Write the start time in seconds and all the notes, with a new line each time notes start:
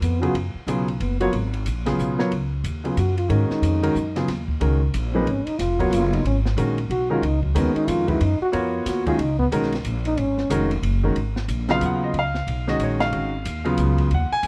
0.01 F2 B3, hi-hat pedal, ride
0.21 C#3 F#3 B3 F4 F#4 G#4, ride
0.34 F#2, ride
0.55 muted upright bass stroke
0.67 B1 C#3 F#3 B3 F4 G#4, hi-hat pedal, ride
0.88 ride
1.00 F#1 B3, ride
1.20 F#3 B3 F4 F#4 A#4 C#5, ride
1.33 G#1, ride
1.53 ride
1.66 A#1, hi-hat pedal, ride
1.86 C#3 F#3 B3 F4 G#4, snare, ride
1.99 B1, hi-hat pedal
2.18 F#3 B3 F4 A#4 C#5, snare
2.31 C#2, ride
2.64 D#2, hi-hat pedal, ride
2.84 C#3 F#3 B3 F4 G#4, ride
2.97 F#2 F#4, hi-hat pedal, ride
3.18 F4, ride
3.29 G#2 D#3 G#3 C#4 D#4 F#4 A#4, ride
3.50 muted upright bass stroke, snare
3.62 F2, hi-hat pedal, ride
3.83 D#3 G#3 C#4 F#4 A#4, ride
3.95 F#2, hi-hat pedal
4.16 C#3 F#3 B3 F4 G#4, snare, ride
4.28 D#2, snare, ride
4.48 kick
4.60 C#2 D#3 G#3 C#4 F#4 A#4, ride
4.94 A#1, hi-hat pedal, ride
5.13 F3 A#3 C4 D#4 G#4 B4
5.27 G#1 C#4, ride
5.46 D#4, muted upright bass stroke, ride
5.59 F1 F4, snare, hi-hat pedal, ride
5.79 F#3 B3 F4 F#4 A#4 C#5, kick, ride
5.91 F#1 F4, hi-hat pedal, ride
6.13 D#4, ride
6.24 G#1 C#4, ride
6.45 snare
6.57 A#1 D#3 G#3 C#4 F#4 A#4, hi-hat pedal, ride
6.78 ride
6.89 B1 F#4, ride
7.10 D#3 G#3 C#4 F4 F#4 A#4
7.22 C#2 D#4, ride
7.43 F#3, kick
7.55 D#2 D#3 G#3 B3 C#4 F#4 A#4, hi-hat pedal, ride
7.75 D#4, muted upright bass stroke, ride
7.88 F2 F4, hi-hat pedal, ride
8.07 D#3 G#3 C#4 E4 F#4 B4, kick, ride
8.21 F#2 D#4, ride
8.41 F#4, muted upright bass stroke
8.52 F2 B3 F4 F#4 A#4 C#5, ride
8.86 D#2 F#4, snare, hi-hat pedal, ride
9.06 D#3 G#3 C#4 F4 F#4 G#4, kick, ride
9.19 C#2 D#4, ride
9.39 B3, kick
9.52 B1 D#3 G#3 C#4 F#4 A#4, hi-hat pedal, ride
9.63 snare
9.72 snare, ride
9.85 A#1, hi-hat pedal, ride
10.05 D#4, ride
10.17 G#1 C#4, ride
10.38 snare
10.50 F1 D#3 G#3 C#4 F#4 A#4, hi-hat pedal, ride
10.71 ride
10.82 F#1, ride
11.03 D#3 G#3 C#4 F#4 A#4
11.15 G#1, ride
11.36 snare
11.48 A#1, hi-hat pedal, ride
11.69 C#3 F#3 B3 F4 F5, snare, ride
11.81 D#2, hi-hat pedal, ride
11.85 F#5
12.04 D#5
12.13 C#2, ride
12.19 F5
12.34 snare
12.47 B1, ride
12.67 D#3 G#3 C#4 F#4 D#5, snare
12.79 A#1, hi-hat pedal, ride
12.84 C#5
13.00 F5, snare, ride
13.12 G#1 D#3 G#3 C#4 F#4, ride
13.45 D#2, hi-hat pedal, ride
13.64 C#3 F#3 B3 F4, ride
13.77 C#2, hi-hat pedal, ride
13.98 kick, ride
14.11 D#2 F#5, ride
14.31 G#5, muted upright bass stroke
14.43 F2, hi-hat pedal, ride